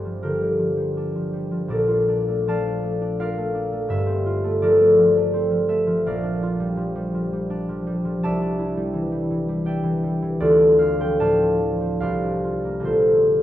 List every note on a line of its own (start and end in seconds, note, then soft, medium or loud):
0.00 1.72 G1 medium
0.00 1.72 G2 medium
0.00 0.40 G3 medium
0.00 0.96 D4 medium
0.00 0.22 F4 medium
0.00 0.21 A#4 medium
0.00 0.75 C5 medium
0.05 0.58 F3 medium
0.23 1.72 D3 medium
0.23 1.87 F4 medium
0.23 1.73 G4 medium
0.23 1.69 A#4 medium
0.41 0.76 G3 medium
0.59 1.14 F3 medium
0.77 1.32 G3 medium
0.97 2.07 D4 medium
1.15 1.50 F3 medium
1.33 1.73 G3 medium
1.51 2.47 F3 medium
1.68 3.93 A#1 medium
1.68 3.93 A#2 medium
1.68 4.62 A4 medium
1.68 3.19 A#4 medium
1.68 2.48 D5 medium
1.88 3.19 F4 medium
2.08 2.65 D4 medium
2.28 2.82 A3 medium
2.48 4.61 F3 medium
2.48 3.19 D5 medium
2.48 3.18 F5 medium
2.48 6.09 A5 loud
2.66 3.00 D4 medium
2.83 3.36 A3 medium
3.01 3.54 D4 medium
3.20 4.25 F4 medium
3.20 4.62 A#4 medium
3.20 4.61 D5 medium
3.20 6.05 F5 loud
3.38 3.71 A3 medium
3.55 6.22 D4 medium
3.72 4.43 A3 medium
3.88 6.08 G1 medium
3.88 6.09 G2 medium
3.88 5.13 E5 loud
4.07 5.32 C4 medium
4.26 6.42 F4 medium
4.44 4.79 A3 medium
4.62 4.97 F3 medium
4.62 6.09 A4 medium
4.62 6.06 A#4 medium
4.62 6.06 D5 loud
4.80 5.16 A3 medium
4.99 5.49 F3 medium
5.17 5.67 A3 medium
5.34 6.09 C4 medium
5.50 5.86 F3 medium
5.68 6.08 A3 medium
5.68 6.31 E5 loud
5.87 6.76 F3 medium
6.06 8.26 A#1 medium
6.06 8.27 A#4 medium
6.06 8.24 D5 medium
6.06 8.26 F5 loud
6.23 7.49 D4 medium
6.43 8.26 F4 medium
6.60 6.94 G3 medium
6.77 7.13 F3 medium
6.95 7.32 G3 medium
7.14 7.68 F3 medium
7.33 7.86 G3 medium
7.50 8.40 D4 medium
7.69 8.04 F3 medium
7.87 8.76 G3 medium
8.05 8.26 F3 medium
8.23 10.47 C2 medium
8.23 9.66 D5 loud
8.23 9.66 E5 loud
8.23 10.75 A5 loud
8.42 9.64 D4 medium
8.59 10.46 E4 medium
8.77 9.11 G3 medium
8.93 9.29 E3 medium
9.12 9.48 G3 medium
9.31 9.82 E3 medium
9.49 10.02 G3 medium
9.65 10.58 D4 medium
9.65 10.39 D5 medium
9.65 10.46 E5 medium
9.65 10.45 G5 medium
9.84 10.21 E3 medium
10.04 10.46 G3 medium
10.22 10.46 E3 medium
10.40 12.05 D2 medium
10.40 12.43 F4 medium
10.40 12.05 A4 medium
10.40 11.19 D5 loud
10.60 12.22 D4 medium
10.79 11.38 C4 medium
10.79 11.14 F5 loud
11.00 11.59 F3 medium
11.00 11.35 G5 loud
11.19 12.05 A2 medium
11.19 12.01 D5 medium
11.19 11.99 F5 medium
11.19 12.05 A5 loud
11.40 11.80 C4 medium
11.60 13.43 F3 medium
11.81 12.82 C4 medium
12.01 12.89 C2 medium
12.01 12.84 C5 medium
12.01 13.43 D5 medium
12.01 13.43 F5 loud
12.24 13.43 D4 medium
12.44 12.85 F4 medium
12.64 13.43 A#3 medium
12.80 13.43 A#1 medium
12.80 13.43 D3 soft
12.80 13.43 A3 soft
12.80 13.43 C4 medium
12.85 13.43 F4 medium
12.85 13.43 A4 medium
12.85 13.43 C5 medium